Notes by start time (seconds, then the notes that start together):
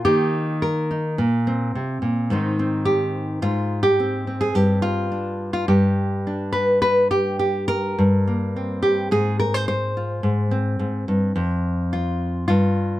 0.05 D#3 A#3 D#4 G4
0.62 A#4
0.91 D#4
1.18 A#2
1.47 C4
1.75 C3
2.02 A#2
2.30 G#2 D#3 C4 D#4
2.59 C4
2.85 G4
3.42 G#2 F4
3.83 G4
4.00 C4
4.27 C4
4.41 G#4
4.55 G2 G4
4.82 F4
5.12 D4
5.53 F4
5.68 G2 G4
6.27 D4
6.53 B4
6.82 B4
7.11 G4
7.39 G4
7.68 A#4
7.99 G2
8.27 A#3
8.56 C4
8.82 G4
9.11 G#2 G#4
9.39 A#4
9.54 C5
9.68 C5
9.97 F4
10.23 G#2
10.51 C4
10.79 G#2
11.08 G2
11.36 F2
11.93 F4
12.48 G2 F4